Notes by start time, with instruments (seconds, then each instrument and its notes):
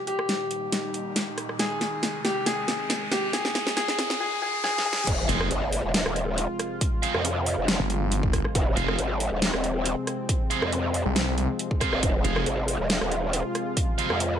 Already playing: analog synth pad A#2 D#3 G3 D#4, riser
0.07 grand piano G4, closed hi-hat
0.19 cross-stick
0.29 snare, closed hi-hat
0.51 closed hi-hat
0.72 snare, closed hi-hat
0.94 closed hi-hat
1.16 snare, closed hi-hat
1.38 cross-stick, closed hi-hat
1.49 cross-stick
1.59 analog synth pad C3 D#3 G#3, grand piano G#4, snare, closed hi-hat
1.81 snare, closed hi-hat
2.03 snare, closed hi-hat
2.25 grand piano G4, snare, closed hi-hat
2.46 grand piano G#4, snare, closed hi-hat
2.68 snare, closed hi-hat
2.90 snare, closed hi-hat
3.12 grand piano G4, snare, closed hi-hat
3.33 grand piano G#4, snare, closed hi-hat
3.45 snare
3.55 snare, closed hi-hat
3.67 snare
3.77 grand piano G#4, snare, closed hi-hat
3.88 snare
3.99 snare, closed hi-hat
4.10 snare
4.20 grand piano G#4
4.42 grand piano G#4
4.64 grand piano G#4, snare
4.78 snare
4.86 grand piano G#4
4.93 snare
5.07 wobble bass F1, analog synth pad C3 F3 G#3 F4, kick, closed hi-hat, crash, impact
5.29 detuned saw bass F1, distorted electric guitar C4 G#4 F5, closed hi-hat
5.41 cross-stick
5.51 wobble bass G#1, closed hi-hat
5.73 open hi-hat
5.84 wobble bass D#1
5.94 snare, closed hi-hat
6.06 wobble bass D#1, cross-stick
6.16 closed hi-hat
6.38 closed hi-hat
6.59 cross-stick, closed hi-hat
6.81 kick, closed hi-hat
7.03 distorted electric guitar C4 G#4 F5, closed hi-hat
7.14 wobble bass F2, cross-stick
7.25 closed hi-hat
7.46 open hi-hat
7.58 wobble bass F1
7.68 snare, closed hi-hat
7.80 detuned saw bass G1
7.90 closed hi-hat
8.12 closed hi-hat
8.23 kick
8.33 kick, cross-stick, closed hi-hat
8.45 cross-stick
8.55 wobble bass F1, analog synth pad C4, kick, closed hi-hat
8.77 detuned saw bass F1, distorted electric guitar C4 G#4 F5, closed hi-hat
8.88 cross-stick
8.99 wobble bass G#1, closed hi-hat
9.20 open hi-hat
9.32 wobble bass D#1
9.42 snare, closed hi-hat
9.54 wobble bass D#1, cross-stick
9.64 closed hi-hat
9.86 closed hi-hat
10.07 cross-stick, closed hi-hat
10.29 kick, closed hi-hat
10.50 distorted electric guitar C4 G#4 F5, closed hi-hat
10.62 wobble bass F2, cross-stick
10.72 closed hi-hat
10.94 open hi-hat
11.06 detuned saw bass C2
11.16 snare, closed hi-hat
11.38 closed hi-hat
11.59 closed hi-hat
11.71 kick
11.81 distorted electric guitar C4 G#4 F5, kick, cross-stick, closed hi-hat
11.93 wobble bass G1, cross-stick
12.03 wobble bass F1, analog synth pad F4, kick, closed hi-hat
12.24 detuned saw bass F1, distorted electric guitar C4 G#4 F5, closed hi-hat
12.36 cross-stick
12.46 wobble bass G#1, closed hi-hat
12.68 open hi-hat
12.80 wobble bass D#1
12.90 snare, closed hi-hat
13.01 wobble bass D#1, cross-stick
13.12 closed hi-hat
13.33 closed hi-hat
13.55 cross-stick, closed hi-hat
13.77 kick, closed hi-hat
13.98 distorted electric guitar C4 G#4 F5, closed hi-hat
14.10 wobble bass F2, cross-stick
14.20 closed hi-hat